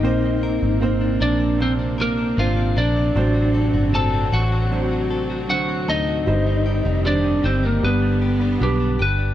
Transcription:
Already playing: clean electric guitar C3 A#3 D#4 G4, string section A#3, lead electric guitar D#4 D#5
0.03 fingered electric bass A#1, clean electric guitar A#2, string section C3 C4, grand piano A#3 C4 C5
0.43 clean electric guitar A#4
0.62 fingered electric bass G#1
0.81 grand piano A#3 C4 C5, clean electric guitar C4
1.01 clean electric guitar D4
1.20 fingered electric bass A#1, lead electric guitar D4 D5, clean electric guitar A#4
1.40 clean electric guitar D4
1.59 clean electric guitar A#2, grand piano A#3 D4 C5, lead electric guitar C4 C5
1.79 clean electric guitar D4
1.98 lead electric guitar A#3 A#4, clean electric guitar A#4
2.18 clean electric guitar D4
2.37 fingered electric bass G#1, grand piano A#3 D4 C5, clean electric guitar C4, lead electric guitar F4 F5
2.57 clean electric guitar D4
2.76 fingered electric bass A#1, lead electric guitar D4 D5, clean electric guitar A#4
2.96 clean electric guitar D4
3.15 fingered electric bass A1, clean electric guitar A2, grand piano A2 F#3 D4 C5, string section F#3
3.34 clean electric guitar F#4
3.54 clean electric guitar A4
3.74 fingered electric bass G1, clean electric guitar F#4
3.93 grand piano F#3 D4 C5, clean electric guitar C4, lead electric guitar A4 A5
4.13 clean electric guitar F#4
4.32 fingered electric bass A1, lead electric guitar F#4 F#5, clean electric guitar A4
4.52 clean electric guitar F#4
4.71 clean electric guitar A2, grand piano F#3 D4 C5
4.91 clean electric guitar F#4
5.10 clean electric guitar A4
5.30 clean electric guitar F#4
5.49 grand piano D3 F#3 C5, clean electric guitar C4, lead electric guitar F#4 F#5
5.68 clean electric guitar F#4
5.88 fingered electric bass D2, lead electric guitar D#4 D#5, clean electric guitar A4
6.08 clean electric guitar F#4
6.26 fingered electric bass G1, clean electric guitar G2, grand piano G2 G3 D#4 C5, string section D#3 G3
6.47 clean electric guitar D#4
6.66 clean electric guitar G4
6.85 fingered electric bass F1, clean electric guitar D#4
7.04 grand piano G3 D4 C5, clean electric guitar C4, lead electric guitar D4 D5
7.11 grand piano D#3
7.24 clean electric guitar D#4
7.44 fingered electric bass G1, lead electric guitar C4 C5, clean electric guitar G4
7.63 lead electric guitar A#3 A#4, clean electric guitar D#4
7.82 fingered electric bass G1, clean electric guitar G2, string section D3 B3, grand piano G3 D4 B4, lead electric guitar B3 B4
8.02 clean electric guitar D4
8.22 clean electric guitar G4
8.41 clean electric guitar D4
8.60 fingered electric bass B1, grand piano G3 D4 B4, clean electric guitar B3, lead electric guitar G4
8.80 clean electric guitar D4
8.99 fingered electric bass G1, clean electric guitar G4, lead electric guitar B4
9.18 clean electric guitar D4

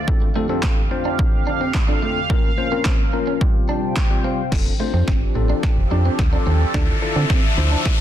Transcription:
Already playing: analog synth pad D3 A3
0.08 analog synth pad F2 G4 F5, tine electric piano C4 D4 F4 A4, kick
0.22 muted clean electric guitar stroke
0.35 clean electric guitar A3, tine electric piano C4 D4 F4 A4
0.49 tine electric piano C4 D4 F4 A4, clean electric guitar C4
0.63 clean electric guitar C4, kick, snare, clap
0.91 tine electric piano C4 D4 F4 C5, muted clean electric guitar stroke
1.05 clean electric guitar D4
1.19 muted clean electric guitar stroke, kick
1.47 clean electric guitar D4
1.61 clean electric guitar C4
1.74 muted clean electric guitar stroke, kick, snare, clap
1.88 tine electric piano C4 D4 F4 A4, clean electric guitar D4
2.02 clean electric guitar A3
2.30 analog synth pad A#2 F3 C#4 A#4, tine electric piano A#3 C#4 F4 A#4, clean electric guitar A#3, kick
2.57 tine electric piano A#3 C#4 F4 C5, muted clean electric guitar stroke
2.71 tine electric piano A#3 C#4 F4 A#4, clean electric guitar C4
2.85 clean electric guitar C4, kick, snare, clap
3.13 tine electric piano A#3 C#4 F4 A#4, muted clean electric guitar stroke
3.27 clean electric guitar C#4
3.41 analog synth pad C3 G3 F4 C5 G5, tine electric piano G3 C4 F4 G4, kick
3.69 clean electric guitar D4, tine electric piano A5
3.96 tine electric piano G5, kick, snare, clap
4.10 tine electric piano G3 C4 F4 G4
4.24 clean electric guitar C4, tine electric piano F5
4.52 fm bass F1, analog synth pad F3 C4 D4 G4 A4, tine electric piano C4 D4 F4 A4, kick, snare, crash, riser
4.66 muted clean electric guitar stroke
4.80 clean electric guitar A3, tine electric piano C4 D4 F4 C5
4.94 fm bass F2, clean electric guitar C4
5.08 fm bass G1, clean electric guitar C4, kick, snare
5.35 fm bass A1, tine electric piano C4 D4 F4 A4, muted clean electric guitar stroke
5.50 clean electric guitar D4
5.63 muted clean electric guitar stroke, kick, snare
5.77 fm bass F1
5.91 fm bass F2, tine electric piano C4 D4 F4 G4, clean electric guitar D4
6.05 clean electric guitar C4
6.19 fm bass D2, muted clean electric guitar stroke, kick, snare
6.33 tine electric piano C4 D4 F4 A4, clean electric guitar D4
6.47 fm bass D#2, clean electric guitar C4
6.74 fm bass D2, analog synth pad D3 F3 D4 E5, tine electric piano D4 E4 F4 A4, clean electric guitar D4, kick, snare
7.02 tine electric piano D4 E4 F4 A4, muted clean electric guitar stroke
7.16 fm bass D3, clean electric guitar C4
7.30 clean electric guitar C4, kick, snare
7.57 fm bass D2, tine electric piano D4 E4 F4 C5, muted clean electric guitar stroke
7.72 clean electric guitar D4
7.85 kick, snare

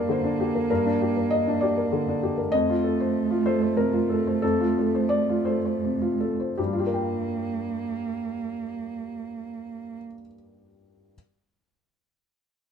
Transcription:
Already playing: felt piano G2 D4 G4 A#4 D5 F5, cello A#3
0.09 felt piano D3 C5
0.24 felt piano D4
0.40 felt piano G4
0.55 felt piano A#4
0.70 felt piano G2 A#4
0.86 felt piano D4
1.01 felt piano G4
1.17 felt piano A#4
1.30 felt piano D#5
1.47 felt piano D4
1.61 felt piano G4 D5
1.77 felt piano A#4
1.92 felt piano D3
2.08 felt piano D4
2.23 felt piano G4
2.37 felt piano A#4
2.52 felt piano F2 D#5, cello A3
2.70 felt piano F4
2.84 felt piano A4
3.00 felt piano C5
3.30 felt piano F4
3.46 felt piano A4 C5
3.62 felt piano C5
3.77 felt piano C3 A#4
3.93 felt piano F4
4.10 felt piano A4
4.27 felt piano C5
4.42 felt piano F2 A4
4.60 felt piano F4
4.78 felt piano A4
4.95 felt piano C5
5.09 felt piano D5
5.29 felt piano F4
5.45 felt piano A4 C5
5.65 felt piano C5
5.84 felt piano C3
6.02 felt piano F4
6.20 felt piano A4
6.40 felt piano C5
6.57 felt piano G2 G4, cello A#3
6.66 felt piano G3
6.73 felt piano F4
6.79 felt piano G4
6.86 felt piano A#4
6.94 felt piano G5

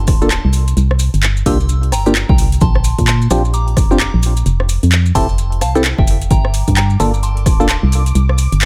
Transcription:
Already playing: impact
0.07 fm bass D1, kick, cross-stick, open hi-hat, maracas
0.22 synth stab A#3 D4 F4 A4, maracas
0.30 synth bell A5 C6, clap, closed hi-hat, maracas
0.45 fm bass C2
0.53 open hi-hat, maracas
0.68 closed hi-hat, maracas
0.77 fm bass C2, closed hi-hat, maracas
0.91 cross-stick
0.99 open hi-hat, maracas
1.14 fm bass G1, closed hi-hat, maracas
1.23 clap, closed hi-hat, maracas
1.37 maracas
1.46 fm bass C2, synth stab A#3 D4 F4 G4, synth bell C6 E6, kick, open hi-hat, maracas
1.60 maracas
1.69 closed hi-hat, maracas
1.83 closed hi-hat
1.92 fm bass G1, synth bell G5 A#5, cross-stick, open hi-hat, maracas
2.06 synth stab A#3 D4 F4 G4, closed hi-hat, maracas
2.15 clap, closed hi-hat, maracas
2.29 fm bass C2, synth bell G5 A#5, kick
2.38 open hi-hat, maracas
2.52 closed hi-hat, maracas
2.61 fm bass A#1, synth bell A5 C6, kick, closed hi-hat, maracas
2.75 cross-stick
2.84 open hi-hat, maracas
2.98 fm bass A#2, kick, closed hi-hat, maracas
3.07 synth bell A5 C6, clap, closed hi-hat, maracas
3.22 maracas
3.31 fm bass A#1, synth stab C4 D4 F4 G4, cross-stick, open hi-hat, maracas
3.45 maracas
3.54 synth bell A#5 D6, closed hi-hat, maracas
3.68 closed hi-hat
3.77 fm bass F1, kick, cross-stick, open hi-hat, maracas
3.91 synth stab C4 D4 F4 G4, maracas
4.00 synth bell A#5 D6, clap, closed hi-hat, maracas
4.14 fm bass A#1
4.23 open hi-hat, maracas
4.37 closed hi-hat, maracas
4.46 fm bass F1, closed hi-hat, maracas
4.60 cross-stick
4.69 open hi-hat, maracas
4.83 fm bass F2, closed hi-hat, maracas
4.91 clap, closed hi-hat, maracas
5.06 maracas
5.15 fm bass F1, synth stab C4 E4 G4 A4, synth bell A5 C6, kick, open hi-hat, maracas
5.29 maracas
5.38 closed hi-hat, maracas
5.52 closed hi-hat
5.61 fm bass C2, synth bell F5 A5, cross-stick, open hi-hat, maracas
5.75 synth stab C4 E4 G4 A4, closed hi-hat, maracas
5.84 clap, closed hi-hat, maracas
5.98 fm bass F1, synth bell E5 G5, kick
6.07 open hi-hat, maracas
6.22 closed hi-hat, maracas
6.30 fm bass G1, synth bell G5 A#5, string machine D6, kick, closed hi-hat, maracas
6.45 cross-stick
6.54 open hi-hat, maracas
6.67 fm bass G2, kick, closed hi-hat, maracas
6.77 synth bell G5 A#5, clap, closed hi-hat, maracas
6.90 maracas
7.00 fm bass G1, synth stab A#3 D4 F4 A4, cross-stick, open hi-hat, maracas
7.14 maracas
7.23 synth bell A5 C6, closed hi-hat, maracas
7.37 closed hi-hat
7.46 fm bass D1, kick, cross-stick, open hi-hat, maracas
7.60 synth stab A#3 D4 F4 A4, maracas
7.69 synth bell A5 C6, clap, closed hi-hat, maracas
7.83 fm bass C2
7.92 open hi-hat, maracas
8.06 closed hi-hat, maracas
8.15 fm bass C2, closed hi-hat, maracas
8.29 cross-stick
8.38 open hi-hat, maracas
8.52 fm bass G1, closed hi-hat, maracas
8.60 clap, closed hi-hat, maracas

